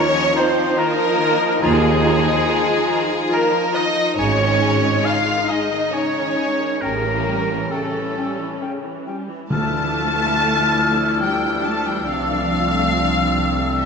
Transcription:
0.00 0.15 D#3 medium
0.00 4.15 F3 medium
0.00 0.37 C#4 loud
0.00 4.15 D#4 medium
0.00 4.17 D#4 loud
0.00 0.36 C#5 loud
0.15 0.36 F3 medium
0.35 0.56 D#3 medium
0.35 0.79 C4 loud
0.35 0.51 F4 medium
0.35 0.80 C5 medium
0.35 0.79 C5 loud
0.35 0.45 A#5 medium
0.56 0.78 F3 medium
0.76 0.98 D#3 loud
0.76 1.63 A#3 loud
0.76 0.93 F4 medium
0.76 1.63 A#4 loud
0.76 1.61 A#4 loud
0.76 0.87 A#5 medium
0.98 1.20 F3 medium
1.19 1.41 D#3 medium
1.19 1.36 F4 medium
1.19 1.29 A#5 medium
1.40 1.62 F3 medium
1.61 2.32 D#2 loud
1.61 2.33 D#2 loud
1.61 1.82 D#3 medium
1.61 3.29 G#3 loud
1.61 1.78 F4 loud
1.61 3.02 G#4 loud
1.61 3.29 G#4 loud
1.61 1.72 A#5 medium
1.82 2.04 F3 medium
2.04 2.26 D#3 medium
2.04 2.20 F4 medium
2.04 2.14 A#5 medium
2.25 2.47 F3 medium
2.45 2.68 D#3 medium
2.45 2.62 F4 medium
2.45 2.57 A#5 medium
2.67 2.89 F3 medium
2.88 3.11 D#3 medium
2.88 3.04 F4 medium
2.88 2.99 A#5 medium
3.10 3.32 F3 medium
3.29 3.54 D#3 medium
3.29 3.76 A#3 loud
3.29 3.45 F4 medium
3.29 3.75 A#4 loud
3.29 3.77 A#4 loud
3.29 3.42 A#5 medium
3.54 3.75 F3 medium
3.72 3.97 D#3 medium
3.72 4.18 D#4 loud
3.72 3.88 F4 medium
3.72 4.18 D#5 loud
3.72 4.19 D#5 loud
3.76 3.86 A#5 medium
3.97 4.19 F3 medium
4.15 4.90 G#1 loud
4.15 4.91 G#2 medium
4.15 4.38 C#3 medium
4.15 6.83 G#3 medium
4.15 5.03 C#4 loud
4.15 4.31 D#4 medium
4.15 6.79 D#4 medium
4.15 5.04 C#5 loud
4.15 5.06 C#5 loud
4.15 4.28 G#5 medium
4.39 4.61 D#3 medium
4.58 4.83 G#3 medium
4.58 4.75 D#4 medium
4.58 4.71 G#5 medium
4.84 5.06 D#3 medium
5.04 5.28 C#3 medium
5.04 5.20 D#4 medium
5.04 5.49 F4 loud
5.04 5.50 F5 loud
5.04 5.14 G#5 medium
5.27 5.49 D#3 medium
5.48 5.72 G#3 medium
5.48 5.64 D#4 medium
5.48 5.94 D#4 medium
5.48 5.95 D#5 medium
5.48 5.94 D#5 medium
5.48 5.59 G#5 medium
5.71 5.93 D#3 medium
5.92 6.16 C#3 medium
5.92 6.82 C#4 loud
5.92 6.08 D#4 medium
5.92 6.83 C#5 loud
5.92 6.83 C#5 medium
5.92 6.03 G#5 medium
6.17 6.39 D#3 medium
6.36 6.60 G#3 medium
6.36 6.52 D#4 medium
6.36 6.48 G#5 medium
6.61 6.83 D#3 medium
6.81 7.57 A1 medium
6.81 7.57 A2 medium
6.81 7.04 C#3 medium
6.81 9.17 G3 medium
6.81 7.70 A#3 loud
6.81 6.98 C#4 medium
6.81 9.14 C#4 medium
6.81 9.31 C#4 medium
6.81 7.73 A#4 medium
6.81 7.70 A#4 medium
6.81 6.93 G5 medium
7.06 7.28 E3 medium
7.27 7.50 G3 medium
7.27 7.43 C#4 medium
7.27 7.38 G5 medium
7.51 7.73 E3 medium
7.71 7.95 C#3 medium
7.71 8.60 A3 medium
7.71 7.89 C#4 medium
7.71 8.61 A4 medium
7.71 8.62 A4 medium
7.71 7.81 G5 medium
7.96 8.18 E3 medium
8.17 8.40 G3 medium
8.17 8.33 C#4 medium
8.17 8.28 G5 medium
8.41 8.63 E3 medium
8.62 8.85 C#3 medium
8.62 8.78 C#4 medium
8.62 8.72 G5 medium
8.85 9.07 E3 medium
9.07 9.30 G3 medium
9.07 9.23 C#4 medium
9.07 9.17 G5 medium
9.31 9.52 E3 medium
9.50 12.04 D2 medium
9.50 10.75 D3 loud
9.50 9.72 D3 medium
9.50 12.04 F3 medium
9.50 11.18 A3 loud
9.50 13.85 D4 medium
9.50 12.04 E4 medium
9.50 13.85 A4 medium
9.50 11.18 A5 medium
9.50 11.19 A5 loud
9.50 12.04 F6 medium
9.74 9.94 E3 medium
9.95 10.16 F3 medium
10.16 10.37 E3 medium
10.39 10.59 D3 medium
10.61 10.81 E3 medium
10.82 11.02 F3 medium
11.03 11.23 E3 medium
11.22 11.45 D3 medium
11.22 11.65 G3 medium
11.22 11.64 G5 medium
11.22 11.66 G5 medium
11.46 11.66 E3 medium
11.65 11.87 F3 medium
11.65 11.87 A3 medium
11.65 11.87 A5 medium
11.86 12.09 E3 medium
11.86 12.08 G3 medium
11.86 12.08 G5 medium
12.08 13.85 C2 medium
12.08 12.28 C3 medium
12.08 13.79 F3 medium
12.08 13.85 A3 medium
12.08 13.85 C4 medium
12.08 13.79 F5 medium
12.08 13.79 F5 loud
12.08 13.85 E6 medium
12.30 12.51 E3 medium
12.51 12.72 F3 medium
12.73 12.94 A3 medium
12.94 13.15 F3 medium
13.16 13.37 E3 medium
13.37 13.58 C3 medium
13.59 13.80 E3 medium
13.79 13.85 E3 medium
13.79 13.85 F3 medium
13.79 13.85 E5 medium

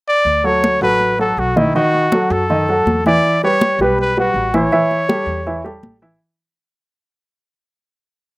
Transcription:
0.08 0.47 D5 loud
0.25 0.77 D2 medium
0.25 high conga soft
0.44 0.75 F#3 medium
0.44 0.75 F#4 medium
0.44 0.75 A4 medium
0.44 0.82 C#5 medium
0.44 high conga soft
0.64 high conga medium
0.81 1.33 A1 medium
0.81 1.12 F#3 medium
0.81 1.12 F#4 medium
0.81 1.12 A4 medium
0.81 1.17 B4 loud
0.81 high conga soft
1.00 high conga soft
1.19 1.49 F#3 medium
1.19 1.50 F#4 medium
1.19 1.50 A4 medium
1.19 1.41 A4 medium
1.19 high conga soft
1.37 1.70 B1 medium
1.37 1.59 F#4 medium
1.37 high conga soft
1.56 1.71 D#3 medium
1.56 1.72 D#4 medium
1.56 1.75 E4 medium
1.56 1.72 D#5 medium
1.56 high conga medium
1.75 2.05 D#3 medium
1.75 2.06 D#4 medium
1.75 2.33 F#4 loud
1.75 2.06 D#5 medium
1.75 high conga soft
1.94 high conga soft
2.12 2.43 F#3 medium
2.12 2.43 F#4 medium
2.12 2.43 A4 medium
2.12 high conga medium
2.30 2.82 F#2 medium
2.30 3.06 A4 medium
2.30 high conga soft
2.50 2.65 D#3 medium
2.50 2.65 D#4 medium
2.50 2.65 D#5 medium
2.50 high conga soft
2.68 2.99 F#3 medium
2.68 2.99 F#4 medium
2.68 2.99 A4 medium
2.68 high conga soft
2.86 3.19 E2 medium
2.86 high conga medium
3.06 3.36 E3 medium
3.06 3.36 E4 medium
3.06 3.41 D5 loud
3.06 3.37 E5 medium
3.06 high conga medium
3.25 high conga soft
3.43 3.74 G3 medium
3.43 3.74 G4 medium
3.43 3.74 B4 medium
3.43 3.78 C#5 loud
3.43 high conga soft
3.61 high conga medium
3.79 4.31 B1 medium
3.79 4.11 G3 medium
3.79 4.11 G4 medium
3.79 4.11 B4 medium
3.79 3.98 B4 medium
3.79 high conga soft
3.99 4.17 B4 medium
3.99 high conga soft
4.17 4.48 G3 medium
4.17 4.48 F#4 medium
4.17 4.53 F#4 medium
4.17 4.48 B4 medium
4.17 high conga soft
4.34 4.67 A1 medium
4.34 high conga soft
4.54 4.69 E3 medium
4.54 4.69 E4 medium
4.54 5.81 C#5 medium
4.54 4.69 E5 medium
4.54 high conga medium
4.72 5.03 E3 medium
4.72 5.03 E4 medium
4.72 5.03 E5 medium
4.72 high conga soft
4.91 high conga soft
5.09 5.40 G3 medium
5.09 5.40 G4 medium
5.09 5.40 A4 medium
5.09 high conga medium
5.26 5.79 E2 medium
5.26 high conga soft
5.46 5.62 E3 medium
5.46 5.62 E4 medium
5.46 5.62 E5 medium
5.46 high conga soft
5.64 5.95 G3 medium
5.64 5.95 G4 medium
5.64 5.96 A4 medium
5.64 high conga soft
5.83 6.16 A1 medium
5.83 high conga medium
6.02 6.17 E3 medium
6.02 6.18 E4 medium
6.02 6.18 E5 medium

